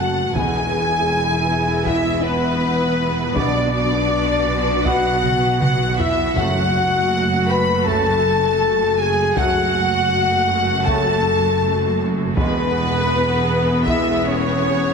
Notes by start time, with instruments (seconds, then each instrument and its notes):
Already playing: double bass section F#1, cello section F#2, viola section A3 C#4, french horn section F#4, violin section F#5, trumpet section F#5
0.34 double bass section E1, cello section E2, trombone section B2 B3, viola section B3 E4, french horn section G#4, violin section G#5, trumpet section G#5, taiko
1.84 trombone section B2 B3, french horn section E4, trumpet section E5, violin section E5, taiko
2.21 french horn section B3, trumpet section B4, violin section B4
3.35 double bass section B1, trombone section B2 B3, cello section B2, french horn section D4, viola section F#4, trumpet section D5, violin section D5, taiko
3.72 french horn section D4, trumpet section D5, violin section D5
4.84 trombone section B2 B3, french horn section F#4, trumpet section F#5, violin section F#5, taiko
5.23 taiko mid
5.61 french horn section F#4, violin section F#5, trumpet section F#5, taiko mid
5.98 french horn section E4, trumpet section E5, violin section E5, taiko low
6.35 double bass section F#1, cello section F#2, timpani F#2, trombone section C#3 A3, viola section A3 F#4, french horn section F#4, violin section F#5, trumpet section F#5, taiko
7.48 french horn section B4, violin section B5, trumpet section B5
7.85 trombone section C#3 A3, french horn section A4, violin section A5, trumpet section A5, taiko
8.98 french horn section G#4, violin section G#5, trumpet section G#5
9.35 double bass section F#1, cello section F#2, trombone section C#3 A3, viola section A3 F#4, french horn section F#4, violin section F#5, trumpet section F#5, taiko
10.86 trombone section C#3 A3, french horn section A4, trumpet section A5, violin section A5, taiko
12.36 double bass section E1, cello section E2, trombone section B2 G#3, french horn section B3, viola section B3 G#4, violin section B4, trumpet section B4, taiko
13.86 trombone section B2 G#3, french horn section E4, violin section E5, trumpet section E5, taiko
14.24 french horn section C#4, violin section C#5, trumpet section C#5